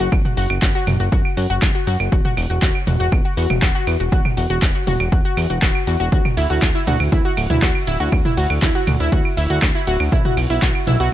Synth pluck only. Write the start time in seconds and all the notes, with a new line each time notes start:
0.00 F#4 F#5
0.25 F#4 F#5
0.37 F#4 F#5
0.62 F#4 F#5
0.75 F#4 F#5
1.00 F#4 F#5
1.12 F#4 F#5
1.37 F#4 F#5
1.50 F#4 F#5
1.75 F#4 F#5
1.87 F#4 F#5
2.12 F#4 F#5
2.25 F#4 F#5
2.50 F#4 F#5
2.62 F#4 F#5
2.87 F#4 F#5
3.00 F#4 F#5
3.25 F#4 F#5
3.37 F#4 F#5
3.62 F#4 F#5
3.75 F#4 F#5
4.00 F#4 F#5
4.12 F#4 F#5
4.37 F#4 F#5
4.50 F#4 F#5
4.75 F#4 F#5
4.87 F#4 F#5
5.12 F#4 F#5
5.25 F#4 F#5
5.50 F#4 F#5
5.62 F#4 F#5
5.87 F#4 F#5
6.00 F#4 F#5
6.12 F#4 F#5
6.37 E4 E5
6.50 F#4 F#5
6.75 E4 E5
6.87 F#4 F#5
7.12 E4 E5
7.25 F#4 F#5
7.50 E4 E5
7.62 F#4 F#5
7.87 E4 E5
8.00 F#4 F#5
8.25 E4 E5
8.37 F#4 F#5
8.62 E4 E5
8.75 F#4 F#5
9.00 E4 E5
9.12 F#4 F#5
9.37 E4 E5
9.50 F#4 F#5
9.75 E4 E5
9.87 F#4 F#5
10.12 E4 E5
10.25 F#4 F#5
10.50 E4 E5
10.62 F#4 F#5
10.87 E4 E5
11.00 F#4 F#5